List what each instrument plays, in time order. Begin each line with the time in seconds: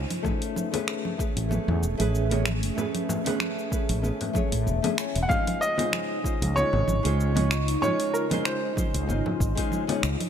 Already playing: ambient pad C#3 D#4 F4 C5
0.10 open hi-hat, low conga, cabasa
0.22 nylon-string guitar A3 C#4 G#4 B4, ambient pad A3 C#4 G#4, kick, low conga, cabasa
0.42 open hi-hat, cabasa
0.56 low conga, cabasa
0.72 nylon-string guitar A3 C#4 G#4 B4, open hi-hat, high conga, cabasa
0.88 finger snap, cabasa
1.05 low conga
1.17 nylon-string guitar A3 C#4 G#4 B4, kick, cabasa
1.37 fretless electric bass A1, open hi-hat, cabasa
1.49 nylon-string guitar A3 C#4 E4 G#4 B4, high conga, low conga, cabasa
1.68 fretless electric bass E2, low conga
1.82 fretless electric bass E1, cabasa
1.97 fretless electric bass A1, nylon-string guitar A3 C#4 E4 G#4 B4, open hi-hat, low conga, cabasa
2.15 cabasa
2.30 nylon-string guitar A3 C#4 G#4 C#5, open hi-hat, high conga
2.46 finger snap, low conga, cabasa
2.63 open hi-hat, cabasa
2.75 nylon-string guitar A3 C#4 G#4 B4, low conga, cabasa
2.95 open hi-hat, low conga, cabasa
3.09 low conga, cabasa
3.24 nylon-string guitar A3 C#4 G#4 B4, open hi-hat, high conga, cabasa
3.40 finger snap, low conga, cabasa
3.59 cabasa
3.70 nylon-string guitar A3 C#4 G#4 B4, kick, cabasa
3.89 fretless electric bass A1, open hi-hat, low conga, cabasa
4.02 nylon-string guitar A3 C#4 E4 G#4 B4, high conga, cabasa
4.21 open hi-hat, low conga
4.33 nylon-string guitar A3 C#4 E4 G#4 C#5, kick, low conga, cabasa
4.52 fretless electric bass A2, kick, open hi-hat, cabasa
4.67 fretless electric bass E1, cabasa
4.82 nylon-string guitar A3 C#4 G#4 E5, open hi-hat, high conga, low conga
4.96 nylon-string guitar A3 C#4 E4 G#4 C#5, finger snap, cabasa
5.16 fretless electric bass E1, open hi-hat, cabasa
5.23 grand piano F#5
5.28 ambient pad C#3 D#4 F4 D#5, nylon-string guitar G#3 C#4 D#4 F4 C5, grand piano F5, kick, low conga, cabasa
5.47 open hi-hat, low conga, cabasa
5.61 grand piano D#5, cabasa
5.77 nylon-string guitar G#3 C#4 D#4 F4 C5, open hi-hat, high conga, cabasa
5.93 finger snap, low conga, cabasa
6.22 nylon-string guitar G#3 C#4 D#4 F4 C5, kick, cabasa
6.42 fretless electric bass C#2, open hi-hat, low conga, cabasa
6.54 nylon-string guitar G#3 C#4 D#4 F4 C#5, grand piano C#5, high conga, cabasa
6.73 fretless electric bass G#1, low conga
6.88 fretless electric bass G#1, low conga, cabasa
7.03 fretless electric bass C#2, nylon-string guitar G#3 C#4 D#4 F4 C5, open hi-hat, cabasa
7.20 cabasa
7.35 nylon-string guitar G#3 C#4 D#4 F4 C#5, open hi-hat, high conga, low conga
7.51 finger snap, cabasa
7.68 open hi-hat, cabasa
7.81 nylon-string guitar G#3 C#4 D#4 F4 C#5, grand piano C#5, low conga, cabasa
8.00 open hi-hat, cabasa
8.13 grand piano A#4, cabasa
8.30 nylon-string guitar G#3 C#4 D#4 F4 C5, open hi-hat, high conga, low conga, cabasa
8.45 grand piano C5, finger snap, cabasa
8.75 nylon-string guitar G#3 C#4 D#4 F4 C5, kick, low conga, cabasa
8.94 fretless electric bass C#2, open hi-hat, cabasa
9.06 fretless electric bass G#1, nylon-string guitar G#3 C#4 D#4 F4 C5, high conga, cabasa
9.26 low conga
9.40 fretless electric bass G#1, kick, cabasa
9.55 nylon-string guitar G#3 C#4 D#4 F4 C5, kick, open hi-hat, cabasa
9.72 low conga, cabasa
9.87 nylon-string guitar G#3 C#4 D#4 F4 C#5, open hi-hat, high conga
10.03 fretless electric bass C#2, finger snap, cabasa
10.21 open hi-hat, low conga, cabasa